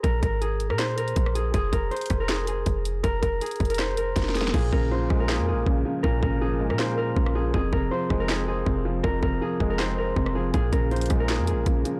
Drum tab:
CC |------------------------------------------------------------------------------------------------|------------------------------------------------------------------------------------------------|------------------------------------------------------------------------------------------------|x-----------------------------------------------------------------------------------------------|
HH |x-----------x-----------x-----------x-----------x-----------x-----x-----x-----------x-----------|x-----------x-----------x--x--x--x--x-----------x-----------x-----------x-----------x-----------|x-----------x-----------x--x--x--x--x--x--x--x--x-----------x-----------x-----------o-----------|------------------------------------------------------------------------------------------------|
CP |------------------------------------------------x-----------------------------------------------|------------------------------------------------x-----------------------------------------------|------------------------------------------------x-----------------------------------------------|------------------------------------------------x-----------------------------------------------|
SD |------------------------------------------r-----o-----------------------------r-----------------|------------------------------------r-----------o-----------------------------------------------|------------------------------------------------o-----------------------o---o---o---o---o---o---|------------------------------------r-----------o-----------------------------------------------|
BD |o-----------o-----------------------------------------------------------o-----------------------|o-----------o-----------------------o-----------------------------------o-----------------------|o-----------o-----------------------o-----------------------------------o-----------------------|o-----------o-----------------------o-----------------------------------o-----------------------|

CC |------------------------------------------------------------------------------------------------|------------------------------------------------------------------------------------------------|------------------------------------------------------------------------------------------------|------------------------------------------------------------------------------------------------|
HH |------------------------------------------------------------------------------------------------|------------------------------------------------------------------------------------------------|------------------------------------------------------------------------------------------------|x-----------x-----------x--x--x--x--x-----------x-----------x-----------x-----------x-----------|
CP |------------------------------------------------x-----------------------------------------------|------------------------------------------------x-----------------------------------------------|------------------------------------------------x-----------------------------------------------|------------------------------------------------x-----------------------------------------------|
SD |------------------------------------------r-----o-----------------------------r-----------------|------------------------------------r-----------o-----------------------------------------------|------------------------------------------------o-----------------------------r-----------------|------------------------------------r-----------o-----------------------------------------------|
BD |o-----------o-----------------------------------------------------------o-----------------------|o-----------o-----------------------o-----------------------------------o-----------------------|o-----------o-----------------------o-----------------------------------o-----------------------|o-----------o-----------------------o-----------------------------------o-----------------------|